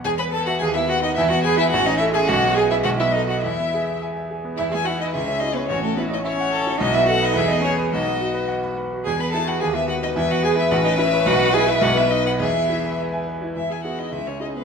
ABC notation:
X:1
M:2/4
L:1/16
Q:1/4=107
K:E
V:1 name="Violin"
g b a f g e f d | e f g e f d e g | f2 g e f e d f | e4 z4 |
e g f d e2 d B | c A B d c4 | d e f d e d c2 | d4 z4 |
g b a f g e f d | e f g e f d e2 | f2 g e f e d f | e4 z4 |
e g f d e c d B |]
V:2 name="Violin"
G B A F G E F D | E F G E F D E G | F2 G E F E D F | E4 z4 |
E4 G4 | F4 E2 A2 | F4 G4 | F6 z2 |
G4 B4 | B8- | B8 | G6 z2 |
E4 G4 |]
V:3 name="Cello"
G B A F G E F D | E F G E F D E G | F2 G E F E D F | E4 z4 |
E G F D E2 D B, | C A, B, D C4 | D E F D E D C2 | D4 z4 |
G B A F G E F D | E F G E F D E2 | F2 G E F E D F | E4 z4 |
E G F D E C D B, |]
V:4 name="Grand piano"
E,, B, B e D,, B, B f | E,, B, B g A,,, C A e | B,,, B, G e B,,, B, A d | E,, B, G e g e G B, |
E,, B, E B C,, C E c | A,,, C E c e f c E | B,,, B, A B E,, B, G B | B,,, B, F B f b B F |
E,, B, E B D,, B, F B | E,, B, G B A,,, C E c | B,,, B, E B B,,, B, D B | E,, B, E B e g B E |
E,,2 [B,EG]2 C,,2 [CEG]2 |]